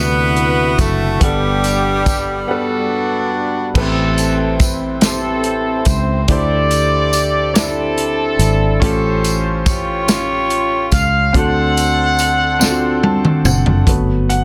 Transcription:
0.00 0.75 D2 medium
0.00 0.81 C3 medium
0.00 1.18 D3 medium
0.00 0.81 B3 loud
0.00 0.82 D4 medium
0.00 0.82 E4 medium
0.00 1.19 E4 medium
0.00 0.83 F#4 medium
0.00 1.19 F#4 medium
0.00 0.76 B4 loud
0.36 closed hi-hat soft
0.78 1.18 F#1 medium
0.78 1.22 A3 medium
0.78 1.22 A4 medium
0.78 kick medium
0.78 closed hi-hat medium
0.78 tambourine soft
1.20 2.44 G1 medium
1.20 2.45 G2 medium
1.20 2.87 G3 medium
1.20 2.08 B3 medium
1.20 2.88 B3 medium
1.20 2.33 D4 medium
1.20 2.91 G4 medium
1.20 2.09 G4 medium
1.20 2.10 A4 medium
1.20 2.08 F#5 medium
1.20 kick medium
1.20 closed hi-hat medium
1.64 closed hi-hat medium
1.64 tambourine soft
2.06 kick medium
2.06 closed hi-hat medium
2.06 tambourine medium
2.47 3.36 G3 medium
2.47 3.35 B3 medium
2.47 3.72 D4 medium
2.47 3.72 F#4 medium
2.47 3.30 A4 medium
2.47 3.37 B4 medium
2.47 3.35 F#5 medium
3.74 5.82 A1 medium
3.74 4.98 A2 medium
3.74 3.81 B3 medium
3.74 4.98 C4 medium
3.74 4.99 E4 medium
3.74 4.63 G4 medium
3.74 4.56 A4 loud
3.74 4.63 A4 medium
3.74 4.63 B4 medium
3.74 kick medium
3.74 crash medium
3.81 4.65 C4 medium
4.18 closed hi-hat medium
4.18 tambourine medium
4.60 kick loud
4.60 closed hi-hat medium
4.60 tambourine medium
5.01 5.89 C4 medium
5.01 6.25 C4 medium
5.01 6.26 E4 medium
5.01 5.89 G4 medium
5.01 5.83 A4 medium
5.01 5.90 A4 medium
5.01 snare loud
5.01 closed hi-hat medium
5.01 tambourine medium
5.05 5.91 C5 medium
5.44 closed hi-hat soft
5.85 6.25 C#2 medium
5.85 6.26 C5 medium
5.85 kick medium
5.85 closed hi-hat medium
5.85 tambourine medium
6.28 8.35 D2 loud
6.28 7.52 D3 medium
6.28 7.15 D4 medium
6.28 7.16 E4 medium
6.28 7.16 G4 medium
6.28 7.52 G4 medium
6.28 7.52 A4 medium
6.28 7.17 C5 medium
6.28 7.56 D5 medium
6.28 kick medium
6.28 closed hi-hat medium
6.71 closed hi-hat medium
6.71 tambourine medium
7.13 closed hi-hat medium
7.13 tambourine medium
7.54 8.41 D4 medium
7.54 8.42 E4 medium
7.54 8.42 G4 medium
7.54 8.80 A4 medium
7.54 8.43 D5 medium
7.54 snare loud
7.54 closed hi-hat medium
7.54 tambourine medium
7.58 8.79 C4 medium
7.58 8.79 E4 medium
7.98 closed hi-hat soft
8.39 8.78 G#1 medium
8.39 closed hi-hat medium
8.39 tambourine medium
8.80 10.88 A1 loud
8.80 10.04 A2 medium
8.80 9.67 C#4 medium
8.80 10.05 C#4 medium
8.80 9.68 F4 medium
8.80 9.69 G4 medium
8.80 9.35 A4 medium
8.80 10.05 C5 medium
8.80 kick loud
8.80 closed hi-hat medium
8.84 9.69 A4 medium
9.24 closed hi-hat medium
9.24 tambourine medium
9.66 10.90 F4 medium
9.66 10.89 G4 medium
9.66 10.88 C#5 loud
9.66 kick loud
9.66 closed hi-hat medium
9.66 tambourine medium
10.07 10.94 C#4 medium
10.07 10.95 F4 medium
10.07 10.95 G4 medium
10.07 10.96 C6 medium
10.07 snare loud
10.07 closed hi-hat loud
10.07 tambourine medium
10.50 closed hi-hat soft
10.91 11.31 C#2 medium
10.91 11.35 F5 loud
10.91 kick medium
10.91 closed hi-hat medium
10.91 tambourine medium
11.33 13.41 D2 loud
11.33 12.57 D3 medium
11.33 12.20 C4 medium
11.33 12.21 D4 medium
11.33 12.22 F#4 medium
11.33 12.22 A4 medium
11.33 13.42 C5 medium
11.33 13.45 F#5 loud
11.33 kick medium
11.33 closed hi-hat medium
11.37 13.42 A4 medium
11.77 closed hi-hat medium
11.77 tambourine medium
12.19 closed hi-hat medium
12.19 tambourine medium
12.59 13.46 C4 medium
12.59 13.47 D4 medium
12.59 12.68 F4 medium
12.59 snare medium
12.59 tambourine loud
12.64 13.49 A4 medium
12.69 13.51 F#4 medium
13.03 13.42 A5 medium
13.03 high tom medium
13.25 mid tom medium
13.45 13.83 F#1 medium
13.45 13.84 F#5 medium
13.45 mid tom medium
13.45 tambourine medium
13.66 floor tom medium
13.87 14.44 G1 medium
13.87 14.43 F#3 soft
13.87 14.43 A3 soft
13.87 14.44 B3 medium
13.87 kick medium
13.87 closed hi-hat medium
14.29 14.44 F#5 medium
14.29 closed hi-hat soft

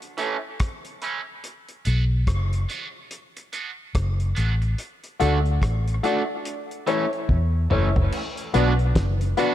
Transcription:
0.02 closed hi-hat soft
0.18 0.36 E3 medium
0.18 0.36 A3 medium
0.18 0.36 C#4 medium
0.18 closed hi-hat medium
0.60 kick loud
0.60 cross-stick medium
0.60 closed hi-hat medium
0.85 closed hi-hat medium
1.02 1.20 E3 medium
1.02 1.20 A3 medium
1.02 1.21 C#4 medium
1.02 closed hi-hat medium
1.44 closed hi-hat medium
1.69 closed hi-hat medium
1.85 2.23 B1 loud
1.85 2.03 B3 medium
1.85 2.04 D4 medium
1.85 2.04 F#4 medium
1.85 closed hi-hat medium
2.27 2.65 F#1 medium
2.27 kick medium
2.27 cross-stick loud
2.27 closed hi-hat medium
2.53 closed hi-hat soft
2.69 2.87 B3 medium
2.69 2.87 D4 medium
2.69 2.88 F#4 medium
2.69 closed hi-hat medium
3.11 closed hi-hat medium
3.37 muted clean electric guitar stroke soft
3.37 closed hi-hat medium
3.53 3.70 B3 medium
3.53 3.71 D4 medium
3.53 3.71 F#4 medium
3.53 closed hi-hat medium
3.95 4.32 F#1 medium
3.95 kick loud
3.95 cross-stick loud
3.95 closed hi-hat medium
4.20 closed hi-hat medium
4.35 4.74 A1 medium
4.35 4.53 B3 medium
4.35 4.54 D4 medium
4.35 4.54 F#4 medium
4.35 closed hi-hat medium
4.62 muted clean electric guitar stroke soft
4.62 closed hi-hat soft
4.78 closed hi-hat medium
5.04 closed hi-hat medium
5.20 5.58 D2 medium
5.20 5.38 A3 medium
5.20 5.38 D4 medium
5.20 5.38 F#4 medium
5.20 5.39 F#4 medium
5.20 5.38 A4 medium
5.20 5.38 D5 medium
5.20 closed hi-hat medium
5.46 closed hi-hat soft
5.62 5.99 A1 medium
5.62 kick medium
5.62 cross-stick loud
5.62 closed hi-hat medium
5.88 closed hi-hat soft
6.03 6.21 A3 medium
6.03 6.22 D4 medium
6.03 6.21 F#4 medium
6.03 6.22 F#4 medium
6.03 6.22 A4 medium
6.03 6.22 D5 loud
6.03 closed hi-hat medium
6.45 closed hi-hat medium
6.71 closed hi-hat soft
6.86 7.04 E3 medium
6.86 7.05 A3 medium
6.86 7.05 C#4 medium
6.86 7.05 E4 medium
6.86 7.05 A4 medium
6.86 7.05 C#5 loud
6.86 closed hi-hat medium
7.13 closed hi-hat soft
7.29 7.66 E2 medium
7.29 kick loud
7.29 high tom medium
7.70 8.08 F#1 medium
7.70 7.88 E3 medium
7.70 7.89 A3 medium
7.70 7.89 C#4 medium
7.70 7.89 E4 medium
7.70 7.89 A4 medium
7.70 7.89 C#5 medium
7.70 mid tom medium
7.96 8.03 A4 soft
7.96 8.03 C#5 soft
7.96 floor tom medium
8.12 crash medium
8.37 closed hi-hat medium
8.54 8.91 B1 loud
8.54 8.72 B3 medium
8.54 8.72 D4 medium
8.54 8.72 F#4 medium
8.54 8.73 F#4 loud
8.54 8.72 B4 medium
8.54 8.72 D5 loud
8.54 closed hi-hat medium
8.79 closed hi-hat soft
8.95 kick loud
8.95 snare loud
8.95 closed hi-hat medium
9.21 closed hi-hat medium
9.37 9.54 B3 medium
9.37 9.54 D4 loud
9.37 9.54 F#4 medium
9.37 9.54 F#4 loud
9.37 9.54 B4 medium
9.37 9.54 D5 medium
9.37 closed hi-hat medium

